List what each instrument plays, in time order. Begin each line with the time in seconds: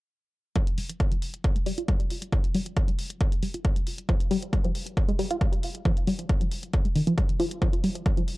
0.56 synth arpeggio sound F3, kick, closed hi-hat
0.67 closed hi-hat
0.78 synth arpeggio sound G3, open hi-hat
0.90 closed hi-hat
1.00 synth arpeggio sound G3, kick, closed hi-hat
1.12 synth arpeggio sound F3, closed hi-hat
1.22 open hi-hat
1.34 closed hi-hat
1.44 kick, closed hi-hat
1.56 synth arpeggio sound G#3, closed hi-hat
1.66 synth arpeggio sound G3, open hi-hat
1.78 synth arpeggio sound F4, closed hi-hat
1.88 synth arpeggio sound G3, kick, closed hi-hat
2.00 closed hi-hat
2.10 open hi-hat
2.22 closed hi-hat
2.32 synth arpeggio sound F3, kick, closed hi-hat
2.44 closed hi-hat
2.54 synth arpeggio sound G3, open hi-hat
2.66 closed hi-hat
2.76 synth arpeggio sound G3, kick, closed hi-hat
2.88 synth arpeggio sound F3, closed hi-hat
2.98 open hi-hat
3.10 closed hi-hat
3.20 kick, closed hi-hat
3.32 synth arpeggio sound G#3, closed hi-hat
3.43 synth arpeggio sound G3, open hi-hat
3.54 synth arpeggio sound F4, closed hi-hat
3.65 synth arpeggio sound G3, kick, closed hi-hat
3.76 closed hi-hat
3.87 open hi-hat
3.98 closed hi-hat
4.09 synth arpeggio sound F3, kick, closed hi-hat
4.20 closed hi-hat
4.31 synth arpeggio sound G3, open hi-hat
4.42 closed hi-hat
4.53 synth arpeggio sound G3, kick, closed hi-hat
4.64 synth arpeggio sound F3, closed hi-hat
4.75 open hi-hat
4.87 closed hi-hat
4.97 kick, closed hi-hat
5.09 synth arpeggio sound G#3, closed hi-hat
5.19 synth arpeggio sound G3, open hi-hat
5.31 synth arpeggio sound F4, closed hi-hat
5.41 synth arpeggio sound G3, kick, closed hi-hat
5.53 closed hi-hat
5.63 open hi-hat
5.75 closed hi-hat
5.85 synth arpeggio sound F3, kick, closed hi-hat
5.97 closed hi-hat
6.07 synth arpeggio sound G3, open hi-hat
6.19 closed hi-hat
6.29 synth arpeggio sound G3, kick, closed hi-hat
6.41 synth arpeggio sound F3, closed hi-hat
6.51 open hi-hat
6.63 closed hi-hat
6.73 kick, closed hi-hat
6.85 synth arpeggio sound G#3, closed hi-hat
6.96 synth arpeggio sound D#3, open hi-hat
7.07 synth arpeggio sound F3, closed hi-hat
7.18 synth arpeggio sound G3, kick, closed hi-hat
7.29 closed hi-hat
7.40 synth arpeggio sound F3, open hi-hat
7.51 closed hi-hat
7.62 synth arpeggio sound F3, kick, closed hi-hat
7.73 closed hi-hat
7.84 synth arpeggio sound G3, open hi-hat
7.95 closed hi-hat
8.06 synth arpeggio sound G3, kick, closed hi-hat
8.17 synth arpeggio sound F3, closed hi-hat
8.28 open hi-hat